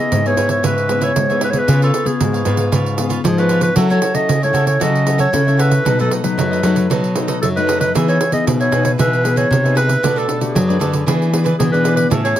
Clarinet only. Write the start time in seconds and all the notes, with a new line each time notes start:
0.00 D#5
0.27 C#5
0.51 C#5
0.66 B4
1.04 C#5
1.44 B4
1.50 C#5
1.58 B4
1.84 A4
2.07 G#4
3.26 G#4
3.39 B4
3.63 B4
3.91 C#5
4.15 D#5
4.44 C#5
4.67 C#5
4.83 D#5
5.20 C#5
5.60 B4
6.01 A4
6.24 B4
7.42 A4
7.56 B4
7.80 B4
8.09 C#5
8.34 D#5
8.61 C#5
8.86 C#5
9.00 B4
9.37 C#5
9.77 B4
10.18 A4
10.42 G#4
11.59 G#4
11.72 B4
11.96 B4
12.24 C#5